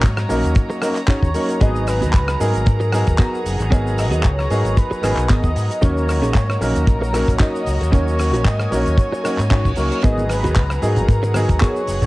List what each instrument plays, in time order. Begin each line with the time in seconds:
Already playing: grand piano F#3 A#3 C#4 D#4 A#4, violin section F#4 C#5 D#5 A#5
0.03 fingered electric bass G#2, kick, clap, closed hi-hat, shaker
0.17 muted clean electric guitar stroke, cross-stick, shaker
0.29 fingered electric bass A#1, grand piano F#3 A#3 C#4 D#4 A#4, open hi-hat, shaker
0.43 fingered electric bass D#2, closed hi-hat, shaker
0.55 muted clean electric guitar stroke, kick, closed hi-hat, shaker
0.70 muted clean electric guitar stroke, shaker
0.81 grand piano F#3 A#3 C#4 D#4 A#4, muted clean electric guitar stroke, cross-stick, open hi-hat, shaker
0.95 clap, closed hi-hat, shaker
1.08 clean electric guitar C#4 D#4 F#4 G#4, analog synth lead C#5, kick, clap, closed hi-hat, shaker
1.23 fingered electric bass D#2, kick, shaker
1.34 grand piano F#3 A#3 C#4 D#4 A#4, open hi-hat, shaker
1.49 muted clean electric guitar stroke, closed hi-hat, shaker
1.60 fingered electric bass G#1, grand piano F#3 B3 D#4 G#4 B4, clean electric guitar B3 F#4 G#4 A#4, violin section G#4 F#5, analog synth lead D#5, kick, closed hi-hat, shaker
1.76 shaker
1.87 analog synth lead B4, cross-stick, open hi-hat, shaker
2.01 fingered electric bass D#2, clean electric guitar B3 F#4 G#4 A#4, closed hi-hat, shaker
2.13 fingered electric bass C#2, kick, clap, closed hi-hat, shaker
2.28 muted clean electric guitar stroke, cross-stick, shaker
2.39 fingered electric bass G#2, grand piano F#3 B3 D#4 G#4 A#4, analog synth lead A#4, open hi-hat, shaker
2.53 fingered electric bass G#1, closed hi-hat, shaker
2.66 fingered electric bass G#2, muted clean electric guitar stroke, kick, closed hi-hat, shaker
2.80 muted clean electric guitar stroke, shaker
2.92 grand piano F#3 B3 D#4 G#4 A#4, muted clean electric guitar stroke, cross-stick, open hi-hat, shaker
3.07 fingered electric bass D#2, kick, closed hi-hat, shaker
3.18 clean electric guitar B3 F#4 G#4 A#4, kick, clap, closed hi-hat, shaker
3.34 shaker
3.45 fingered electric bass F#1, open hi-hat, shaker
3.59 fingered electric bass G#1, muted clean electric guitar stroke, closed hi-hat, shaker
3.70 grand piano F#3 B3 D#4 G#4 A#4, clean electric guitar B3 F#4 G#4 C#5, kick, closed hi-hat, shaker
3.87 shaker
3.98 analog synth lead D#5, cross-stick, open hi-hat, shaker
4.11 fingered electric bass D#2, clean electric guitar B3 F#4 G#4 A#4, closed hi-hat, shaker
4.23 fingered electric bass C#2, analog synth lead C#5, kick, clap, closed hi-hat, shaker
4.38 muted clean electric guitar stroke, cross-stick, shaker
4.50 fingered electric bass G#2, grand piano F#3 B3 D#4 G#4 A#4, open hi-hat, shaker
4.65 fingered electric bass G#1, closed hi-hat, shaker
4.77 analog synth lead B4, muted clean electric guitar stroke, kick, closed hi-hat, shaker
4.91 muted clean electric guitar stroke, muted fingered electric bass stroke, shaker
5.02 fingered electric bass G#1, grand piano F#3 B3 D#4 G#4 A#4, muted clean electric guitar stroke, cross-stick, open hi-hat, shaker
5.17 fingered electric bass B1, clap, closed hi-hat, shaker
5.29 fingered electric bass G#1, clean electric guitar B3 F#4 G#4 A#4, analog synth lead D#5, kick, clap, closed hi-hat, shaker
5.44 fingered electric bass D#2, kick, shaker
5.56 fingered electric bass G#2, open hi-hat, shaker
5.70 muted clean electric guitar stroke, closed hi-hat, shaker
5.81 fingered electric bass D#2, grand piano F#3 A#3 C#4 D#4 A#4, clean electric guitar C#4 D#4 F#4 A#4, violin section F#4 C#5 D#5, analog synth lead C#5, kick, closed hi-hat, shaker
5.97 shaker
6.09 cross-stick, open hi-hat, shaker
6.22 fingered electric bass A#1, clean electric guitar C#4 D#4 F#4 G#4, closed hi-hat, shaker
6.34 fingered electric bass G#2, kick, clap, closed hi-hat, shaker
6.49 muted clean electric guitar stroke, cross-stick, shaker
6.61 fingered electric bass A#1, grand piano F#3 A#3 C#4 D#4 A#4, analog synth lead A#4, open hi-hat, shaker
6.75 fingered electric bass D#2, closed hi-hat, shaker
6.87 fingered electric bass A#1, analog synth lead A#4, muted clean electric guitar stroke, kick, closed hi-hat, shaker
7.01 muted clean electric guitar stroke, shaker
7.13 grand piano F#3 A#3 C#4 D#4 A#4, muted clean electric guitar stroke, cross-stick, open hi-hat, shaker
7.28 fingered electric bass A#1, kick, closed hi-hat, shaker
7.40 clean electric guitar C#4 D#4 F#4 A#4, analog synth lead D#5, kick, clap, closed hi-hat, shaker
7.56 shaker
7.66 fingered electric bass C#2, open hi-hat, shaker
7.81 fingered electric bass D#2, muted clean electric guitar stroke, closed hi-hat, shaker
7.91 grand piano F#3 A#3 C#4 D#4 A#4, clean electric guitar C#4 D#4 F#4 A#4, analog synth lead C#5, violin section G#5, kick, closed hi-hat, shaker
8.08 shaker
8.19 analog synth lead C#5, cross-stick, open hi-hat, shaker
8.33 fingered electric bass A#1, clean electric guitar C#4 D#4 F#4 A#4, closed hi-hat, shaker
8.45 fingered electric bass G#2, analog synth lead D#5, kick, clap, closed hi-hat, shaker
8.59 muted clean electric guitar stroke, cross-stick, shaker
8.71 fingered electric bass A#1, grand piano F#3 A#3 C#4 D#4 A#4, analog synth lead C#5, open hi-hat, shaker
8.86 fingered electric bass D#2, closed hi-hat, shaker
8.98 muted clean electric guitar stroke, kick, closed hi-hat, reverse cymbal, shaker
9.12 muted clean electric guitar stroke, shaker
9.23 grand piano F#3 A#3 C#4 D#4 A#4, muted clean electric guitar stroke, cross-stick, open hi-hat, shaker
9.38 fingered electric bass G#2, clap, closed hi-hat, shaker
9.50 clean electric guitar C#4 D#4 F#4 A#4, analog synth lead C#5, kick, clap, closed hi-hat, shaker
9.65 fingered electric bass A#1, kick, shaker
9.76 fingered electric bass C#2, grand piano F#3 A#3 C#4 D#4 A#4, open hi-hat, shaker
9.92 muted clean electric guitar stroke, closed hi-hat, shaker
10.02 fingered electric bass G#1, grand piano F#3 B3 D#4 G#4 B4, clean electric guitar B3 F#4 G#4 A#4, violin section G#4 F#5 A#5, analog synth lead D#5, kick, closed hi-hat, shaker
10.18 high conga, shaker
10.29 analog synth lead B4, cross-stick, open hi-hat, shaker
10.44 fingered electric bass D#2, clean electric guitar B3 F#4 G#4 A#4, closed hi-hat, muted conga, shaker
10.56 fingered electric bass C#2, kick, clap, closed hi-hat, shaker
10.70 muted clean electric guitar stroke, cross-stick, shaker
10.82 fingered electric bass G#2, grand piano F#3 B3 D#4 G#4, analog synth lead A#4, open hi-hat, shaker
10.96 fingered electric bass G#1, closed hi-hat, low conga, shaker
11.08 fingered electric bass G#2, muted clean electric guitar stroke, kick, closed hi-hat, shaker
11.23 muted clean electric guitar stroke, muted conga, shaker
11.34 grand piano F#3 B3 D#4 G#4, muted clean electric guitar stroke, cross-stick, open hi-hat, high conga, shaker
11.49 fingered electric bass D#2, kick, closed hi-hat, shaker
11.60 clean electric guitar B3 F#4 G#4 A#4, analog synth lead C#5, kick, clap, closed hi-hat, shaker
11.76 shaker
11.87 fingered electric bass F#1, open hi-hat, shaker
12.02 fingered electric bass G#1, muted clean electric guitar stroke, closed hi-hat, low conga, shaker